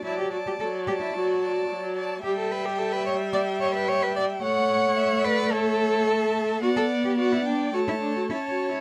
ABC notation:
X:1
M:4/4
L:1/16
Q:1/4=109
K:D
V:1 name="Violin"
a2 a4 a4 a4 a2 | g8 g8 | f8 e4 a4 | f4 f2 g2 a4 a4 |]
V:2 name="Violin"
d2 d4 d4 d4 d2 | e16 | f4 e2 d2 c4 e4 | d4 d4 c4 c4 |]
V:3 name="Cello"
E G F G A2 G E F4 z4 | G A B G A B c2 d2 c B c B d2 | c6 B2 A8 | F A2 G F E D2 F E D F (3E2 F2 E2 |]
V:4 name="Viola" clef=bass
F,4 F,4 F,4 F,4 | G,16 | A,16 | B,8 A,4 C4 |]